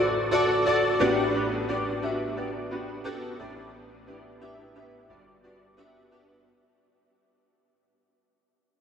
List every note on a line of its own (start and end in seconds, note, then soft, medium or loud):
0.00 0.96 A1 medium
0.00 0.96 A2 medium
0.00 0.31 F#4 loud
0.00 0.32 A4 loud
0.00 1.02 B4 loud
0.00 1.02 C5 medium
0.00 0.33 D5 loud
0.31 0.62 F#4 loud
0.31 0.62 A4 loud
0.31 0.62 D5 loud
0.66 0.96 F#4 loud
0.66 0.96 A4 loud
0.66 0.96 D5 loud
1.00 3.35 A1 medium
1.00 3.35 A2 medium
1.00 1.30 B3 loud
1.00 1.30 D4 loud
1.00 1.30 F#4 loud
1.00 1.30 G4 loud
1.00 1.30 D5 loud
1.34 1.64 B3 medium
1.34 1.64 D4 medium
1.34 1.64 F#4 medium
1.34 1.64 G4 medium
1.34 1.64 B4 medium
1.68 1.98 B3 medium
1.68 1.98 D4 medium
1.68 1.98 F#4 medium
1.68 1.98 G4 medium
1.68 1.99 D5 loud
2.02 2.32 B3 medium
2.02 2.32 D4 medium
2.02 2.32 F#4 medium
2.02 2.33 G4 medium
2.02 2.33 E5 loud
2.36 2.66 B3 medium
2.36 2.66 D4 medium
2.36 2.67 F#4 medium
2.36 2.67 G4 medium
2.36 2.67 D5 medium
2.70 3.00 B3 medium
2.70 3.01 D4 medium
2.70 3.01 F#4 medium
2.70 3.01 G4 medium
2.70 3.01 B4 medium
3.04 3.34 B3 loud
3.04 3.35 D4 loud
3.04 3.35 F#4 loud
3.04 3.35 G4 loud
3.04 3.35 A4 loud
3.39 5.05 A1 medium
3.39 5.05 A2 medium
3.39 3.99 B3 medium
3.39 3.99 D4 medium
3.39 3.99 E4 medium
3.39 3.99 G4 medium
3.39 3.99 D5 loud
4.07 4.37 B3 medium
4.07 4.37 D4 medium
4.07 4.37 E4 medium
4.07 4.37 G4 medium
4.07 4.37 D5 medium
4.40 4.71 B3 medium
4.40 4.71 D4 medium
4.40 4.71 E4 medium
4.40 4.71 G4 medium
4.40 4.71 E5 loud
4.75 5.05 B3 medium
4.75 5.05 D4 medium
4.75 5.05 E4 medium
4.75 5.05 G4 medium
4.75 5.05 E5 medium
5.09 6.42 G1 medium
5.09 6.42 G2 medium
5.09 5.39 B3 medium
5.09 5.39 D4 medium
5.09 5.39 F#4 medium
5.09 5.39 G4 medium
5.09 5.40 D5 medium
5.43 5.73 B3 medium
5.43 5.73 D4 medium
5.43 5.73 F#4 medium
5.43 5.74 G4 medium
5.43 5.74 D5 medium
5.77 6.07 B3 loud
5.77 6.07 D4 loud
5.77 6.07 F#4 loud
5.77 6.08 G4 loud
5.77 6.08 E5 loud
6.11 6.41 B3 loud
6.11 6.41 D4 loud
6.11 6.42 F#4 loud
6.11 6.42 G4 loud
6.11 6.42 E5 loud